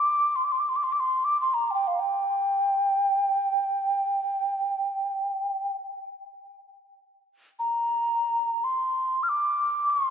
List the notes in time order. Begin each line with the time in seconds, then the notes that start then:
Already playing: D6
0.36 C6
0.45 D6
0.52 C6
0.60 D6
0.69 C6
0.76 D6
0.83 C6
0.92 D6
1.00 C6
1.25 D6
1.41 C6
1.54 A#5
1.68 G5 A#5
1.74 G5
1.87 F5
2.00 G5
7.59 A#5
8.64 C6
9.23 F6
9.29 D6
9.90 C6